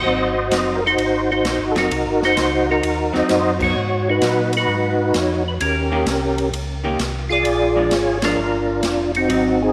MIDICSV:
0, 0, Header, 1, 5, 480
1, 0, Start_track
1, 0, Tempo, 461538
1, 64, Time_signature, 4, 2, 24, 8
1, 10114, End_track
2, 0, Start_track
2, 0, Title_t, "Tonewheel organ"
2, 0, Program_c, 0, 16
2, 0, Note_on_c, 0, 66, 66
2, 0, Note_on_c, 0, 72, 66
2, 0, Note_on_c, 0, 75, 100
2, 781, Note_on_c, 0, 70, 73
2, 803, Note_off_c, 0, 75, 0
2, 834, Note_off_c, 0, 72, 0
2, 836, Note_off_c, 0, 66, 0
2, 873, Note_off_c, 0, 70, 0
2, 898, Note_on_c, 0, 66, 62
2, 903, Note_on_c, 0, 63, 75
2, 903, Note_on_c, 0, 72, 110
2, 1356, Note_off_c, 0, 72, 0
2, 1359, Note_off_c, 0, 63, 0
2, 1359, Note_off_c, 0, 66, 0
2, 1369, Note_on_c, 0, 72, 94
2, 1371, Note_on_c, 0, 63, 70
2, 1371, Note_on_c, 0, 66, 71
2, 1714, Note_off_c, 0, 72, 0
2, 1781, Note_on_c, 0, 69, 62
2, 1845, Note_off_c, 0, 63, 0
2, 1845, Note_off_c, 0, 66, 0
2, 1853, Note_off_c, 0, 69, 0
2, 1857, Note_on_c, 0, 63, 55
2, 1857, Note_on_c, 0, 66, 55
2, 1869, Note_on_c, 0, 70, 86
2, 2296, Note_off_c, 0, 70, 0
2, 2326, Note_off_c, 0, 66, 0
2, 2329, Note_off_c, 0, 63, 0
2, 2339, Note_on_c, 0, 66, 66
2, 2341, Note_on_c, 0, 63, 78
2, 2341, Note_on_c, 0, 72, 122
2, 2771, Note_off_c, 0, 72, 0
2, 2810, Note_off_c, 0, 63, 0
2, 2810, Note_off_c, 0, 66, 0
2, 2816, Note_on_c, 0, 70, 95
2, 2822, Note_on_c, 0, 66, 59
2, 2823, Note_on_c, 0, 63, 65
2, 3249, Note_off_c, 0, 70, 0
2, 3294, Note_off_c, 0, 66, 0
2, 3298, Note_on_c, 0, 72, 74
2, 3307, Note_on_c, 0, 66, 70
2, 3319, Note_on_c, 0, 75, 108
2, 3650, Note_off_c, 0, 75, 0
2, 3669, Note_off_c, 0, 72, 0
2, 3682, Note_on_c, 0, 72, 68
2, 3723, Note_off_c, 0, 63, 0
2, 3757, Note_off_c, 0, 66, 0
2, 3763, Note_off_c, 0, 72, 0
2, 3770, Note_on_c, 0, 66, 64
2, 3786, Note_on_c, 0, 73, 95
2, 4246, Note_off_c, 0, 66, 0
2, 4259, Note_on_c, 0, 63, 65
2, 4259, Note_on_c, 0, 66, 69
2, 4261, Note_off_c, 0, 73, 0
2, 4273, Note_on_c, 0, 71, 113
2, 4699, Note_off_c, 0, 71, 0
2, 4743, Note_off_c, 0, 66, 0
2, 4748, Note_off_c, 0, 63, 0
2, 4752, Note_on_c, 0, 71, 105
2, 4756, Note_on_c, 0, 66, 70
2, 4760, Note_on_c, 0, 63, 64
2, 5386, Note_off_c, 0, 71, 0
2, 5390, Note_on_c, 0, 73, 86
2, 5651, Note_off_c, 0, 66, 0
2, 5653, Note_off_c, 0, 63, 0
2, 5670, Note_off_c, 0, 73, 0
2, 5700, Note_on_c, 0, 71, 72
2, 5764, Note_off_c, 0, 71, 0
2, 5834, Note_on_c, 0, 61, 49
2, 5842, Note_on_c, 0, 70, 71
2, 5847, Note_on_c, 0, 67, 48
2, 6749, Note_off_c, 0, 61, 0
2, 6753, Note_off_c, 0, 70, 0
2, 6755, Note_off_c, 0, 67, 0
2, 7587, Note_on_c, 0, 65, 64
2, 7596, Note_on_c, 0, 68, 69
2, 7617, Note_on_c, 0, 74, 114
2, 8260, Note_off_c, 0, 74, 0
2, 8263, Note_on_c, 0, 73, 88
2, 8507, Note_off_c, 0, 65, 0
2, 8512, Note_off_c, 0, 68, 0
2, 8575, Note_on_c, 0, 70, 95
2, 8577, Note_on_c, 0, 62, 53
2, 8578, Note_off_c, 0, 73, 0
2, 8579, Note_on_c, 0, 65, 55
2, 9159, Note_off_c, 0, 70, 0
2, 9482, Note_off_c, 0, 62, 0
2, 9483, Note_off_c, 0, 65, 0
2, 9531, Note_on_c, 0, 66, 81
2, 9535, Note_on_c, 0, 60, 59
2, 9535, Note_on_c, 0, 63, 55
2, 9995, Note_off_c, 0, 60, 0
2, 10007, Note_on_c, 0, 60, 73
2, 10008, Note_off_c, 0, 63, 0
2, 10008, Note_on_c, 0, 68, 113
2, 10015, Note_off_c, 0, 66, 0
2, 10021, Note_on_c, 0, 63, 72
2, 10114, Note_off_c, 0, 60, 0
2, 10114, Note_off_c, 0, 63, 0
2, 10114, Note_off_c, 0, 68, 0
2, 10114, End_track
3, 0, Start_track
3, 0, Title_t, "Hollow-body jazz guitar"
3, 0, Program_c, 1, 26
3, 55, Note_on_c, 1, 54, 58
3, 67, Note_on_c, 1, 60, 60
3, 71, Note_on_c, 1, 63, 65
3, 350, Note_off_c, 1, 54, 0
3, 356, Note_off_c, 1, 60, 0
3, 358, Note_off_c, 1, 63, 0
3, 537, Note_on_c, 1, 54, 63
3, 546, Note_on_c, 1, 60, 63
3, 550, Note_on_c, 1, 63, 73
3, 831, Note_off_c, 1, 54, 0
3, 836, Note_off_c, 1, 60, 0
3, 837, Note_off_c, 1, 63, 0
3, 1822, Note_on_c, 1, 54, 74
3, 1826, Note_on_c, 1, 60, 69
3, 1832, Note_on_c, 1, 63, 76
3, 1966, Note_off_c, 1, 54, 0
3, 1968, Note_off_c, 1, 60, 0
3, 1970, Note_off_c, 1, 63, 0
3, 3252, Note_on_c, 1, 54, 73
3, 3260, Note_on_c, 1, 60, 80
3, 3265, Note_on_c, 1, 63, 78
3, 3707, Note_off_c, 1, 54, 0
3, 3712, Note_off_c, 1, 60, 0
3, 3714, Note_off_c, 1, 63, 0
3, 3737, Note_on_c, 1, 54, 61
3, 3742, Note_on_c, 1, 59, 66
3, 3749, Note_on_c, 1, 63, 69
3, 3884, Note_off_c, 1, 54, 0
3, 3886, Note_off_c, 1, 59, 0
3, 3889, Note_off_c, 1, 63, 0
3, 4385, Note_on_c, 1, 54, 70
3, 4401, Note_on_c, 1, 63, 69
3, 5123, Note_off_c, 1, 54, 0
3, 5131, Note_off_c, 1, 63, 0
3, 6152, Note_on_c, 1, 51, 65
3, 6154, Note_on_c, 1, 58, 77
3, 6158, Note_on_c, 1, 61, 79
3, 6163, Note_on_c, 1, 67, 74
3, 6292, Note_off_c, 1, 51, 0
3, 6293, Note_off_c, 1, 58, 0
3, 6295, Note_off_c, 1, 61, 0
3, 6297, Note_off_c, 1, 67, 0
3, 7110, Note_on_c, 1, 51, 70
3, 7116, Note_on_c, 1, 58, 70
3, 7120, Note_on_c, 1, 61, 65
3, 7121, Note_on_c, 1, 67, 66
3, 7251, Note_off_c, 1, 51, 0
3, 7254, Note_off_c, 1, 58, 0
3, 7256, Note_off_c, 1, 61, 0
3, 7257, Note_off_c, 1, 67, 0
3, 8069, Note_on_c, 1, 53, 67
3, 8075, Note_on_c, 1, 56, 70
3, 8084, Note_on_c, 1, 62, 72
3, 8211, Note_off_c, 1, 53, 0
3, 8214, Note_off_c, 1, 56, 0
3, 8218, Note_off_c, 1, 62, 0
3, 8556, Note_on_c, 1, 53, 70
3, 8561, Note_on_c, 1, 56, 76
3, 8565, Note_on_c, 1, 62, 72
3, 8695, Note_off_c, 1, 53, 0
3, 8697, Note_off_c, 1, 56, 0
3, 8699, Note_off_c, 1, 62, 0
3, 9656, Note_on_c, 1, 54, 68
3, 9665, Note_on_c, 1, 60, 73
3, 9672, Note_on_c, 1, 63, 71
3, 9953, Note_off_c, 1, 54, 0
3, 9957, Note_off_c, 1, 60, 0
3, 9961, Note_off_c, 1, 63, 0
3, 10114, End_track
4, 0, Start_track
4, 0, Title_t, "Tonewheel organ"
4, 0, Program_c, 2, 16
4, 54, Note_on_c, 2, 32, 94
4, 524, Note_off_c, 2, 32, 0
4, 526, Note_on_c, 2, 30, 83
4, 1000, Note_off_c, 2, 30, 0
4, 1013, Note_on_c, 2, 32, 80
4, 1484, Note_off_c, 2, 32, 0
4, 1493, Note_on_c, 2, 34, 81
4, 1653, Note_off_c, 2, 34, 0
4, 1657, Note_on_c, 2, 32, 56
4, 1820, Note_off_c, 2, 32, 0
4, 1821, Note_on_c, 2, 30, 60
4, 1971, Note_off_c, 2, 30, 0
4, 1986, Note_on_c, 2, 36, 89
4, 2140, Note_off_c, 2, 36, 0
4, 2144, Note_on_c, 2, 32, 63
4, 2304, Note_off_c, 2, 32, 0
4, 2308, Note_on_c, 2, 30, 65
4, 2455, Note_off_c, 2, 30, 0
4, 2468, Note_on_c, 2, 37, 92
4, 2932, Note_off_c, 2, 37, 0
4, 2944, Note_on_c, 2, 39, 82
4, 3244, Note_off_c, 2, 39, 0
4, 3279, Note_on_c, 2, 39, 41
4, 3354, Note_off_c, 2, 39, 0
4, 3435, Note_on_c, 2, 42, 89
4, 3895, Note_off_c, 2, 42, 0
4, 3909, Note_on_c, 2, 44, 97
4, 4373, Note_off_c, 2, 44, 0
4, 4388, Note_on_c, 2, 46, 100
4, 4852, Note_off_c, 2, 46, 0
4, 4863, Note_on_c, 2, 44, 85
4, 5330, Note_off_c, 2, 44, 0
4, 5349, Note_on_c, 2, 41, 92
4, 5813, Note_off_c, 2, 41, 0
4, 5828, Note_on_c, 2, 39, 100
4, 6293, Note_off_c, 2, 39, 0
4, 6301, Note_on_c, 2, 36, 89
4, 6769, Note_off_c, 2, 36, 0
4, 6779, Note_on_c, 2, 37, 82
4, 7249, Note_off_c, 2, 37, 0
4, 7261, Note_on_c, 2, 36, 84
4, 7730, Note_off_c, 2, 36, 0
4, 7736, Note_on_c, 2, 34, 95
4, 8207, Note_off_c, 2, 34, 0
4, 8213, Note_on_c, 2, 32, 86
4, 8686, Note_off_c, 2, 32, 0
4, 8698, Note_on_c, 2, 31, 85
4, 9168, Note_off_c, 2, 31, 0
4, 9183, Note_on_c, 2, 29, 91
4, 9651, Note_off_c, 2, 29, 0
4, 9666, Note_on_c, 2, 32, 99
4, 10114, Note_off_c, 2, 32, 0
4, 10114, End_track
5, 0, Start_track
5, 0, Title_t, "Drums"
5, 534, Note_on_c, 9, 44, 60
5, 534, Note_on_c, 9, 51, 72
5, 538, Note_on_c, 9, 38, 66
5, 638, Note_off_c, 9, 44, 0
5, 638, Note_off_c, 9, 51, 0
5, 642, Note_off_c, 9, 38, 0
5, 1023, Note_on_c, 9, 51, 64
5, 1127, Note_off_c, 9, 51, 0
5, 1506, Note_on_c, 9, 44, 58
5, 1506, Note_on_c, 9, 51, 64
5, 1510, Note_on_c, 9, 38, 72
5, 1610, Note_off_c, 9, 44, 0
5, 1610, Note_off_c, 9, 51, 0
5, 1614, Note_off_c, 9, 38, 0
5, 1828, Note_on_c, 9, 51, 46
5, 1832, Note_on_c, 9, 38, 50
5, 1932, Note_off_c, 9, 51, 0
5, 1936, Note_off_c, 9, 38, 0
5, 1989, Note_on_c, 9, 51, 69
5, 2093, Note_off_c, 9, 51, 0
5, 2312, Note_on_c, 9, 38, 44
5, 2416, Note_off_c, 9, 38, 0
5, 2463, Note_on_c, 9, 44, 56
5, 2463, Note_on_c, 9, 51, 72
5, 2468, Note_on_c, 9, 38, 72
5, 2567, Note_off_c, 9, 44, 0
5, 2567, Note_off_c, 9, 51, 0
5, 2572, Note_off_c, 9, 38, 0
5, 2946, Note_on_c, 9, 51, 76
5, 3050, Note_off_c, 9, 51, 0
5, 3271, Note_on_c, 9, 38, 35
5, 3375, Note_off_c, 9, 38, 0
5, 3423, Note_on_c, 9, 44, 56
5, 3423, Note_on_c, 9, 51, 68
5, 3427, Note_on_c, 9, 38, 61
5, 3527, Note_off_c, 9, 44, 0
5, 3527, Note_off_c, 9, 51, 0
5, 3531, Note_off_c, 9, 38, 0
5, 3747, Note_on_c, 9, 36, 87
5, 3750, Note_on_c, 9, 49, 72
5, 3851, Note_off_c, 9, 36, 0
5, 3854, Note_off_c, 9, 49, 0
5, 4384, Note_on_c, 9, 44, 62
5, 4384, Note_on_c, 9, 51, 74
5, 4388, Note_on_c, 9, 38, 77
5, 4488, Note_off_c, 9, 44, 0
5, 4488, Note_off_c, 9, 51, 0
5, 4492, Note_off_c, 9, 38, 0
5, 4709, Note_on_c, 9, 51, 69
5, 4813, Note_off_c, 9, 51, 0
5, 5346, Note_on_c, 9, 44, 59
5, 5346, Note_on_c, 9, 51, 63
5, 5350, Note_on_c, 9, 38, 69
5, 5450, Note_off_c, 9, 44, 0
5, 5450, Note_off_c, 9, 51, 0
5, 5454, Note_off_c, 9, 38, 0
5, 5829, Note_on_c, 9, 51, 74
5, 5933, Note_off_c, 9, 51, 0
5, 6307, Note_on_c, 9, 44, 67
5, 6307, Note_on_c, 9, 51, 69
5, 6311, Note_on_c, 9, 38, 74
5, 6411, Note_off_c, 9, 44, 0
5, 6411, Note_off_c, 9, 51, 0
5, 6415, Note_off_c, 9, 38, 0
5, 6636, Note_on_c, 9, 51, 50
5, 6740, Note_off_c, 9, 51, 0
5, 6796, Note_on_c, 9, 51, 69
5, 6900, Note_off_c, 9, 51, 0
5, 7273, Note_on_c, 9, 44, 64
5, 7273, Note_on_c, 9, 51, 66
5, 7277, Note_on_c, 9, 38, 64
5, 7377, Note_off_c, 9, 44, 0
5, 7377, Note_off_c, 9, 51, 0
5, 7381, Note_off_c, 9, 38, 0
5, 7747, Note_on_c, 9, 51, 73
5, 7851, Note_off_c, 9, 51, 0
5, 8227, Note_on_c, 9, 44, 55
5, 8227, Note_on_c, 9, 51, 73
5, 8231, Note_on_c, 9, 38, 69
5, 8331, Note_off_c, 9, 44, 0
5, 8331, Note_off_c, 9, 51, 0
5, 8335, Note_off_c, 9, 38, 0
5, 8549, Note_on_c, 9, 51, 68
5, 8553, Note_on_c, 9, 38, 80
5, 8653, Note_off_c, 9, 51, 0
5, 8657, Note_off_c, 9, 38, 0
5, 9181, Note_on_c, 9, 44, 57
5, 9181, Note_on_c, 9, 51, 65
5, 9185, Note_on_c, 9, 38, 73
5, 9285, Note_off_c, 9, 44, 0
5, 9285, Note_off_c, 9, 51, 0
5, 9289, Note_off_c, 9, 38, 0
5, 9512, Note_on_c, 9, 51, 52
5, 9616, Note_off_c, 9, 51, 0
5, 9668, Note_on_c, 9, 51, 68
5, 9772, Note_off_c, 9, 51, 0
5, 10114, End_track
0, 0, End_of_file